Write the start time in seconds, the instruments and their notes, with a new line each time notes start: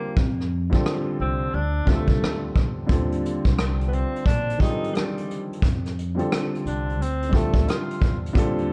Already playing: felt piano D3 G3 C4 F4 G4, tenor saxophone A#3
0.17 upright bass F2, kick
0.41 cross-stick
0.70 felt piano D3 G3 C4 F4, kick
0.75 felt piano A4
0.86 cross-stick
1.20 upright bass C2, tenor saxophone C4
1.54 upright bass D2, tenor saxophone D4
1.85 upright bass D2, felt piano D3 G3 C4 F4, kick
1.89 tenor saxophone A3, felt piano A4
2.08 upright bass C2, kick
2.22 upright bass D2, cross-stick
2.56 upright bass E2, kick
2.87 upright bass D#2, felt piano D3 G3 C4 F4, kick
2.91 felt piano A4, closed hi-hat
3.12 closed hi-hat
3.25 closed hi-hat
3.44 upright bass C2, kick, closed hi-hat
3.59 cross-stick, closed hi-hat
3.81 closed hi-hat
3.87 tenor saxophone B3
3.93 tenor saxophone C4, closed hi-hat
4.16 closed hi-hat
4.26 upright bass A#1, tenor saxophone D4, kick, closed hi-hat
4.50 closed hi-hat
4.58 felt piano D#3 G3 C4 F4, tenor saxophone D#4, kick
4.63 felt piano G#4, closed hi-hat
4.70 felt piano A4
4.84 closed hi-hat
4.95 tenor saxophone G3, cross-stick, closed hi-hat
5.18 closed hi-hat
5.30 closed hi-hat
5.53 closed hi-hat
5.62 upright bass F2, kick, closed hi-hat
5.86 cross-stick, closed hi-hat
5.99 closed hi-hat
6.15 felt piano D3 G3 C4 F4
6.19 felt piano A4, closed hi-hat
6.32 cross-stick, closed hi-hat
6.55 closed hi-hat
6.66 upright bass C2, tenor saxophone D4, closed hi-hat
6.89 closed hi-hat
7.00 upright bass D2, tenor saxophone C4, closed hi-hat
7.22 closed hi-hat
7.29 felt piano D3 G3 C4 F4, kick
7.34 tenor saxophone A3, felt piano A4, closed hi-hat
7.54 upright bass D2, kick, closed hi-hat
7.68 tenor saxophone F4, cross-stick, closed hi-hat
7.91 closed hi-hat
8.02 upright bass E2, kick, closed hi-hat
8.26 closed hi-hat
8.33 upright bass D#2, felt piano D3 G3 C4 F4, kick
8.37 felt piano A4, closed hi-hat
8.58 closed hi-hat